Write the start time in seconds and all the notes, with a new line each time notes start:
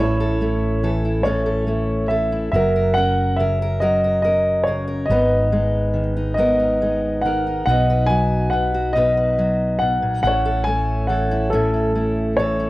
Already playing: A1 C#5
0.00 A2 C#4 E4 A4
0.20 A4
0.41 A3 E4
0.83 E3 A4
1.05 E4
1.23 A2 C#4 E4 A4 C#5
1.46 A4
1.67 A3 E4
2.08 E3 A4 E5
2.32 E4
2.52 F#1 F#3 F#4 A#4 E5
2.56 A#4
2.76 A#4
2.94 C#4 A#4 F#5
3.36 C#3 A#4 E5
3.62 A#4
3.80 F#3 F#4 A#4 D#5
4.04 A#4
4.22 C#4 A#4 D#5
4.64 C#3 C#5
4.68 A#4
4.88 A#4
5.06 G#1 D#5
5.10 G#2 B3 D#4 A#4 B4
5.52 G#3 D#4
5.94 D#3
6.17 D#4
6.34 G#2 D#5
6.38 B3 D#4 A#4
6.60 A#4
6.82 G#3 D#4
7.21 D#3 F#5
7.26 A#4
7.47 D#4
7.66 B1 B2 D#4 F#4 F#5
7.70 B4 D#5
7.90 B4
8.06 F#3 F#4 G#5
8.50 B2 B4 F#5
8.74 F#4
8.93 B2 D#4 D#5
8.97 F#4 B4
9.17 B4
9.38 F#3 F#4
9.79 B2 F#5
10.02 A#2
10.23 A1 A2 C#4 E4 A4 F#5
10.27 C#5
10.46 A4
10.64 A3 E4 G#5
11.07 E3 A4 F#5
11.31 E4
11.50 A2 C#4 A4
11.54 E4
11.74 E4
11.95 A3 E4
12.37 E3 A4 C#5
12.60 E4